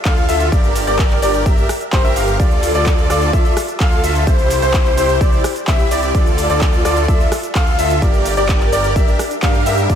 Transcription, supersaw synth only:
0.05 F4 A4 F5
0.29 F4 A4 E5
0.52 G4 A#4 D5
0.87 G4 A#4 D5
1.22 G4 A#4 D5
1.46 G4 A#4 E5
1.93 G4 A#4 C5
2.04 G4 A#4 E5
2.16 G4 A#4 F5
2.40 F4 A4 D5
2.75 F4 A4 D5
3.10 F4 A4 D5
3.33 F4 A4 E5
3.80 F4 A4 F5
4.04 F4 A4 E5
4.27 E4 G4 C5
4.62 E4 G4 C5
4.97 E4 G4 C5
5.21 E4 G4
5.68 E4 G4 E5
5.91 E4 G4 D5
6.14 F4 A4 D5
6.50 F4 A4 D5
6.85 F4 A4 D5
7.08 F4 A4 E5
7.55 F4 A4 F5
7.79 F4 A4 E5
8.02 G4 A#4 D5
8.37 G4 A#4 D5
8.72 G4 A#4 D5
8.96 G4 A#4
9.43 G4 A#4 F5
9.66 G4 A#4 E5
9.90 F4 A4 D5

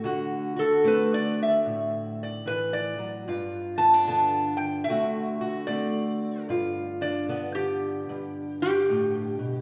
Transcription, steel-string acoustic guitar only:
0.04 D3 F#4
0.56 F#4
0.84 A3 C4
1.66 A2
2.46 E3
2.98 F#3
3.28 G2 F4
3.78 B3
3.93 D4
4.08 D3 B3
4.89 D3 A3 C4 F#4
5.41 F#4
5.68 A3 C4
6.49 G2 F4
7.01 D4
7.28 D3 B3
8.09 G2
8.89 A2
9.39 B2

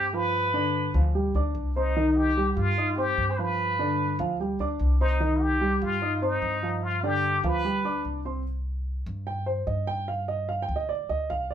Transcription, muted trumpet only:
Already playing: G4
0.14 B4
1.75 D#4
2.16 G4
2.56 F4
2.96 G4
3.31 C5
3.37 B4
5.00 D#4
5.41 G4
5.82 F4
6.22 D#4
6.83 F4
7.04 G4
7.46 B4

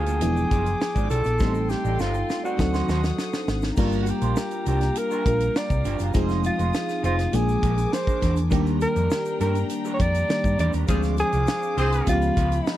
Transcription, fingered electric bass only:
Already playing: D2
0.21 E1
0.51 F#1
0.96 G#1
1.10 B1
1.25 A#1
1.40 A1
1.85 A1
1.99 G1
2.59 D2
2.88 D#2
3.48 G#1
3.77 G1
4.22 A#1
4.67 C2
5.26 A#1
5.70 C2
5.85 G1
6.00 F#1
6.15 F1
6.59 F1
7.04 F1
7.33 A#1
7.63 A#1
8.22 E2
8.52 D#2
8.96 F2
9.41 G2
10.00 F2
10.44 G2
10.59 E2
10.74 D#2
10.89 D2
11.33 C2
11.77 C2
12.07 C#2
12.37 C#2

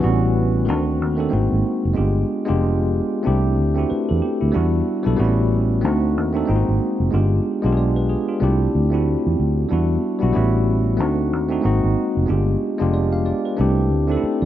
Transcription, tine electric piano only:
0.00 E3 G3 B3 C4 F#4
0.09 C#4
0.65 D#3 A3 C4 D4 F#4
1.16 D#3 A3 C4 D4
1.20 A4
1.29 G#3 A#3 C4 D#4
1.33 F#4
1.94 G#3 B3 D4 F4 G4
2.45 G#3 B3 D4 F4 G4
3.23 A3 C4 D4 E4
3.27 G4
3.74 A3 C4 D4 E4
3.79 F#4
3.90 B4
4.09 A4
4.22 G4
4.41 E4
4.52 G3 B3 D4 E4 F#4
5.03 G3 B3 D4 E4
5.07 A4
5.16 G3 B3 C4 E4 F#4
5.25 C#4
5.81 A3 C4 D4 D#4
5.86 F#4
6.33 A3 C4 D4 D#4 A4
6.45 G#3 A#3 C4 D#4
6.50 F4
6.56 F#4
7.11 G#3 B3 D4 F4
7.15 G4
7.62 G#3 B3 D4 F4
7.66 G4
7.73 G#4
7.77 D5
7.96 B4
8.09 G#4
8.28 F4
8.40 A3 C4 D4 E4 G4
8.90 A3 C4 D4 E4
8.95 F#4
9.69 G3 B3 D4 E4
9.73 F#4
10.19 G3 B3 D4 E4
10.23 F#4
10.32 G3 B3 C#4 E4 F#4
10.97 A3 C4 D4 D#4
11.01 F#4
11.48 A3 C4 D4 D#4 F#4
11.61 G#3 A#3 C4 D#4
11.65 F#4
12.26 G#3 B3 D4 F4 G4
12.78 G#3 B3 D4 F4 G4
12.94 D5
13.12 F5
13.26 D5
13.45 B4
13.56 A3 C4 D4 E4
13.61 G4
14.08 A3 C4 D4 D#4
14.12 A4
14.17 E4
14.42 D5

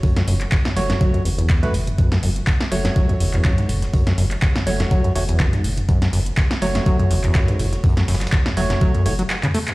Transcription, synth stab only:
Already playing: A3 F#4 C#5
0.76 A3 F#4 C#5
1.63 A3 F#4 B4
2.72 A3 F#4 C#5
4.67 A3 F#4 C#5
5.16 A3 F#4 C#5
6.62 A3 F#4 C#5
8.57 A3 F#4 C#5
9.06 A3 F#4 C#5

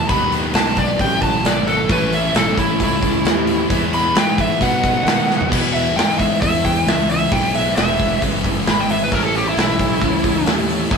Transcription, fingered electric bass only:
0.09 D#2
0.55 B1
1.00 A1
1.44 G#1
1.89 A1
2.35 B1
2.57 muted fingered electric bass stroke
2.80 C#2
3.25 D#2
3.70 E2
4.16 G#2
4.61 B2
5.06 D#3
5.52 B2
5.96 G#2
6.42 E2
6.86 C#2
7.32 B1
7.78 E1
8.22 F#1
8.68 G#1
9.12 A1
9.57 B1
10.02 C#2
10.46 D#2
10.91 E2

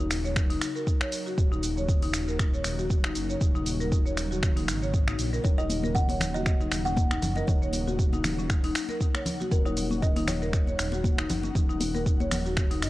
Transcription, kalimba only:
5.44 C#5
5.58 D#5
5.95 F#5
6.34 D#5
6.85 F#5
7.36 D#5
7.47 C#5
9.52 A#4
9.66 C#5
10.02 D#5
10.28 C#5

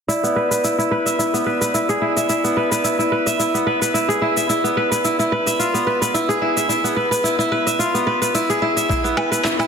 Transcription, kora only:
0.08 E4
0.23 B3
0.36 B4
0.51 B4
0.64 E4
0.78 E4
0.91 B4
1.06 E5
1.19 E4
1.34 B3
1.46 B4
1.61 B4
1.74 E4
1.89 G#4
2.02 E4
2.17 E5
2.29 E4
2.44 B3
2.57 B4
2.71 B4
2.84 E4
2.99 E4
3.12 B4
3.26 E5
3.39 E4
3.54 B3
3.67 B4
3.82 B4
3.94 E4
4.09 G#4
4.22 E4
4.37 E5
4.49 E4
4.64 B3
4.77 B4
4.92 B4
5.04 E4
5.19 E4
5.32 B4
5.47 E5
5.59 F4
5.74 B3
5.87 B4
6.02 B4
6.14 E4
6.29 G#4
6.42 E4
6.57 E5
6.69 E4
6.84 B3
6.96 B4
7.11 B4
7.24 E4
7.39 E4
7.52 B4
7.67 E5
7.79 F4
7.94 B3
8.07 B4
8.22 B4
8.35 E4
8.50 G#4
8.62 E4
8.77 E5
8.89 E4
9.04 B3
9.17 B4
9.32 B4
9.44 E4
9.59 E4

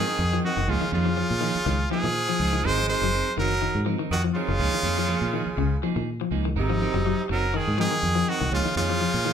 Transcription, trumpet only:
Already playing: G#4
0.45 F#4
0.70 F4
0.94 F4
1.92 G#4
2.66 C5
2.90 C5
3.40 A#4
4.12 F#4
4.35 F4
6.58 D#4
7.32 A#4
7.57 G#4
7.81 G#4
8.29 F#4
8.54 F4
8.77 F4

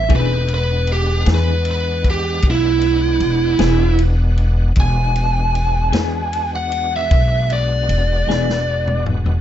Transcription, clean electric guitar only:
0.09 E3 B3 D4 G#4
1.26 E3 B3 D4 G#4
3.59 E3 B3 D4 G#4
5.92 E3 B3 D4 G#4
8.29 E3 B3 D4 G#4

